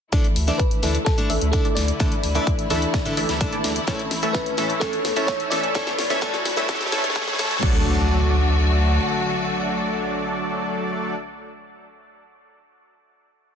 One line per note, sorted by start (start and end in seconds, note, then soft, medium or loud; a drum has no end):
0.12 0.26 D3 medium
0.12 3.84 D3 medium
0.12 0.39 E3 medium
0.12 0.26 A3 medium
0.12 0.39 A3 medium
0.12 0.26 D4 medium
0.12 0.39 D4 medium
0.12 5.71 E4 medium
0.12 0.26 E4 medium
0.12 0.39 A4 medium
0.12 0.26 A4 medium
0.12 0.39 D5 medium
0.12 kick loud
0.12 snare soft
0.12 closed hi-hat medium
0.12 riser medium
0.24 closed hi-hat soft
0.36 0.51 D2 medium
0.36 open hi-hat loud
0.47 0.61 D3 medium
0.47 0.80 E3 medium
0.47 0.80 A3 medium
0.47 0.61 A3 medium
0.47 0.61 D4 medium
0.47 0.80 D4 medium
0.47 0.61 E4 medium
0.47 0.80 A4 medium
0.47 0.61 D5 medium
0.47 0.80 E5 loud
0.47 snare soft
0.47 closed hi-hat soft
0.58 1.07 B4 medium
0.58 kick loud
0.58 closed hi-hat medium
0.71 closed hi-hat soft
0.82 0.98 D2 medium
0.82 0.96 D3 medium
0.82 1.27 E3 medium
0.82 0.96 A3 medium
0.82 1.27 A3 medium
0.82 0.96 D4 medium
0.82 1.27 D4 medium
0.82 0.96 E4 medium
0.82 1.27 A4 medium
0.82 0.97 A4 medium
0.82 1.27 E5 loud
0.82 snare soft
0.82 open hi-hat medium
0.95 closed hi-hat soft
1.05 1.50 A4 medium
1.05 kick loud
1.05 snare medium
1.05 closed hi-hat medium
1.18 1.31 D3 medium
1.18 1.31 A3 medium
1.18 1.31 D4 medium
1.18 1.32 E4 medium
1.18 1.32 A4 medium
1.18 closed hi-hat soft
1.30 1.37 A1 loud
1.30 1.62 E3 medium
1.30 1.62 A3 medium
1.30 1.62 D4 medium
1.30 1.62 A4 medium
1.30 1.62 E5 medium
1.30 open hi-hat loud
1.41 1.56 D2 loud
1.41 closed hi-hat soft
1.52 1.66 D3 medium
1.52 1.66 A3 medium
1.52 1.67 D4 medium
1.52 1.67 E4 medium
1.52 1.77 A4 medium
1.52 1.67 A4 loud
1.52 kick loud
1.52 closed hi-hat medium
1.65 1.92 E3 medium
1.65 1.92 A3 medium
1.65 1.92 D4 medium
1.65 1.92 A4 medium
1.65 1.92 D5 medium
1.65 closed hi-hat soft
1.75 1.91 D2 medium
1.75 3.13 D5 medium
1.75 snare medium
1.75 open hi-hat medium
1.88 closed hi-hat soft
2.00 2.13 D3 medium
2.00 2.27 E3 medium
2.00 3.86 G3 medium
2.00 2.13 A3 medium
2.00 2.27 A3 medium
2.00 2.13 D4 medium
2.00 2.27 D4 medium
2.00 2.14 E4 medium
2.00 2.27 A4 medium
2.00 2.14 A4 loud
2.00 2.27 D5 medium
2.00 kick loud
2.00 snare medium
2.00 closed hi-hat medium
2.12 closed hi-hat soft
2.23 2.38 D2 medium
2.23 open hi-hat loud
2.34 2.48 D3 medium
2.34 2.68 E3 medium
2.34 2.68 A3 medium
2.34 2.48 A3 medium
2.34 2.49 D4 medium
2.34 2.68 D4 medium
2.34 2.49 E4 medium
2.34 2.68 A4 medium
2.34 2.49 D5 medium
2.34 2.68 E5 loud
2.34 closed hi-hat soft
2.47 kick loud
2.47 closed hi-hat medium
2.59 closed hi-hat soft
2.70 2.85 D2 medium
2.70 2.83 D3 medium
2.70 3.15 E3 loud
2.70 2.84 A3 medium
2.70 3.15 A3 medium
2.70 2.84 D4 medium
2.70 3.15 D4 medium
2.70 2.84 E4 medium
2.70 3.15 A4 medium
2.70 2.84 A4 medium
2.70 3.15 E5 loud
2.70 snare medium
2.70 open hi-hat medium
2.82 closed hi-hat soft
2.94 kick loud
2.94 snare medium
2.94 closed hi-hat medium
3.05 3.19 D3 medium
3.05 3.19 A3 medium
3.05 3.19 D4 medium
3.05 3.19 E4 medium
3.05 3.19 A4 medium
3.05 closed hi-hat soft
3.17 3.25 A1 loud
3.17 3.50 E3 medium
3.17 3.50 A3 medium
3.17 3.50 D4 medium
3.17 3.50 A4 medium
3.17 3.50 E5 medium
3.17 open hi-hat loud
3.29 3.44 D2 loud
3.29 snare medium
3.29 closed hi-hat soft
3.40 3.54 D3 medium
3.40 3.54 A3 medium
3.40 3.54 D4 medium
3.40 3.54 E4 medium
3.40 3.54 A4 loud
3.40 kick loud
3.40 closed hi-hat medium
3.52 3.79 E3 medium
3.52 3.79 A3 medium
3.52 3.79 D4 medium
3.52 3.79 A4 medium
3.52 3.79 D5 medium
3.52 closed hi-hat soft
3.64 3.79 D2 medium
3.64 snare medium
3.64 open hi-hat loud
3.76 closed hi-hat soft
3.87 4.01 A2 medium
3.87 4.14 E3 medium
3.87 4.01 A3 medium
3.87 4.14 A3 medium
3.87 5.73 A3 medium
3.87 4.01 C#4 medium
3.87 4.14 C#4 medium
3.87 4.01 E4 medium
3.87 4.14 A4 medium
3.87 4.01 A4 medium
3.87 4.14 C#5 medium
3.87 5.73 C#5 medium
3.87 kick loud
3.87 snare medium
3.87 closed hi-hat medium
3.99 closed hi-hat soft
4.11 4.26 A1 medium
4.11 snare medium
4.11 open hi-hat loud
4.22 4.36 A2 medium
4.22 4.55 E3 medium
4.22 4.55 A3 medium
4.22 4.36 A3 medium
4.22 4.36 C#4 medium
4.22 4.55 C#4 medium
4.22 4.36 E4 medium
4.22 4.55 A4 medium
4.22 4.36 C#5 medium
4.22 4.55 E5 medium
4.22 closed hi-hat soft
4.33 4.82 B4 medium
4.33 kick loud
4.33 snare medium
4.33 closed hi-hat medium
4.46 closed hi-hat soft
4.57 4.73 A1 medium
4.57 4.71 A2 medium
4.57 4.79 E3 medium
4.57 4.79 A3 medium
4.57 4.71 A3 soft
4.57 4.71 C#4 medium
4.57 4.79 C#4 medium
4.57 4.72 E4 medium
4.57 4.79 A4 medium
4.57 4.72 A4 medium
4.57 4.79 E5 loud
4.57 snare medium
4.57 open hi-hat medium
4.70 closed hi-hat soft
4.80 4.95 A2 medium
4.80 5.08 E3 medium
4.80 5.08 A3 medium
4.80 4.95 A3 medium
4.80 5.08 C#4 medium
4.80 4.95 C#4 medium
4.80 4.95 E4 medium
4.80 5.29 A4 medium
4.80 4.95 A4 medium
4.80 5.08 C#5 medium
4.80 kick loud
4.80 snare medium
4.80 closed hi-hat medium
4.93 closed hi-hat soft
5.05 5.12 E2 loud
5.05 snare medium
5.05 open hi-hat loud
5.16 5.31 A1 loud
5.16 5.30 A2 medium
5.16 5.49 E3 medium
5.16 5.49 A3 medium
5.16 5.30 A3 medium
5.16 5.30 C#4 medium
5.16 5.49 C#4 medium
5.16 5.30 E4 medium
5.16 5.49 A4 medium
5.16 5.30 C#5 medium
5.16 5.49 E5 loud
5.16 closed hi-hat soft
5.27 5.52 C#5 loud
5.27 kick loud
5.27 snare medium
5.27 closed hi-hat medium
5.40 closed hi-hat soft
5.50 5.66 A1 medium
5.50 5.65 A2 medium
5.50 5.73 E3 loud
5.50 5.73 A3 medium
5.50 5.65 A3 medium
5.50 5.65 C#4 medium
5.50 5.73 C#4 medium
5.50 5.65 E4 medium
5.50 5.73 A4 medium
5.50 5.65 A4 medium
5.50 6.88 D5 loud
5.50 5.73 E5 loud
5.50 snare medium
5.50 open hi-hat loud
5.63 closed hi-hat soft
5.74 5.88 A2 medium
5.74 6.02 E3 medium
5.74 7.61 G3 medium
5.74 6.02 A3 medium
5.74 5.88 A3 medium
5.74 5.89 C#4 medium
5.74 6.02 C#4 medium
5.74 7.61 D4 medium
5.74 5.89 E4 medium
5.74 6.02 A4 medium
5.74 5.89 A4 loud
5.74 7.61 B4 medium
5.74 6.02 C#5 medium
5.74 kick loud
5.74 snare medium
5.74 closed hi-hat medium
5.87 snare medium
5.87 closed hi-hat soft
5.98 6.13 G1 medium
5.98 snare medium
5.98 open hi-hat loud
6.10 6.20 A2 medium
6.10 6.20 E3 medium
6.10 6.20 A3 medium
6.10 6.20 C#4 medium
6.10 6.20 E4 medium
6.10 6.20 A4 medium
6.10 6.20 C#5 medium
6.10 6.20 E5 loud
6.10 snare medium
6.10 closed hi-hat soft
6.21 6.35 A2 loud
6.21 6.49 E3 medium
6.21 6.49 A3 medium
6.21 6.35 A3 medium
6.21 6.35 C#4 medium
6.21 6.36 E4 medium
6.21 6.49 A4 medium
6.21 6.36 A4 loud
6.21 kick loud
6.21 snare loud
6.21 closed hi-hat medium
6.34 snare medium
6.34 closed hi-hat soft
6.45 6.60 G1 medium
6.45 snare medium
6.45 open hi-hat loud
6.56 6.67 A2 medium
6.56 6.67 E3 loud
6.56 6.67 A3 medium
6.56 6.67 C#4 medium
6.56 6.67 E4 medium
6.56 6.67 A4 medium
6.56 6.67 C#5 medium
6.56 6.67 E5 loud
6.56 snare medium
6.56 closed hi-hat soft
6.68 6.82 A2 medium
6.68 6.90 E3 medium
6.68 6.82 A3 medium
6.68 6.90 A3 medium
6.68 6.82 C#4 medium
6.68 6.90 C#4 medium
6.68 6.82 E4 medium
6.68 6.90 A4 medium
6.68 6.82 A4 loud
6.68 6.90 C#5 medium
6.68 kick loud
6.68 snare loud
6.68 closed hi-hat medium
6.75 snare medium
6.81 snare medium
6.81 closed hi-hat soft
6.86 snare medium
6.92 7.00 G1 medium
6.92 7.05 A2 medium
6.92 7.14 E3 medium
6.92 7.14 A3 medium
6.92 7.06 A3 medium
6.92 7.06 C#4 medium
6.92 7.14 C#4 medium
6.92 7.06 E4 medium
6.92 7.14 A4 medium
6.92 7.06 A4 loud
6.92 7.14 C#5 medium
6.92 snare loud
6.92 open hi-hat loud
6.98 snare medium
7.04 7.19 G2 loud
7.04 snare medium
7.04 closed hi-hat soft
7.10 snare medium
7.15 7.29 A2 medium
7.15 7.37 E3 medium
7.15 7.37 A3 medium
7.15 7.29 A3 medium
7.15 7.29 C#4 medium
7.15 7.37 C#4 medium
7.15 7.29 E4 medium
7.15 7.37 A4 medium
7.15 7.29 A4 loud
7.15 7.37 C#5 medium
7.15 kick loud
7.15 snare loud
7.15 closed hi-hat medium
7.22 snare medium
7.28 snare medium
7.28 closed hi-hat soft
7.33 snare medium
7.38 7.54 G1 medium
7.38 7.52 A2 medium
7.38 7.61 E3 medium
7.38 7.61 A3 medium
7.38 7.52 A3 medium
7.38 7.53 C#4 medium
7.38 7.61 C#4 medium
7.38 7.53 E4 medium
7.38 7.61 A4 medium
7.38 7.53 A4 loud
7.38 7.61 C#5 medium
7.38 snare loud
7.38 open hi-hat loud
7.45 snare loud
7.51 snare loud
7.51 closed hi-hat soft
7.57 snare loud
7.61 8.99 D2 loud
7.61 11.15 D3 medium
7.61 11.14 F#3 medium
7.61 11.15 F#3 medium
7.61 11.15 A3 medium
7.61 11.15 D4 medium
7.61 11.16 D4 medium
7.61 11.15 F#4 medium
7.61 11.17 F#4 medium
7.61 11.15 A4 medium
7.61 11.15 D5 medium
7.61 kick loud
7.61 crash medium
7.61 impact medium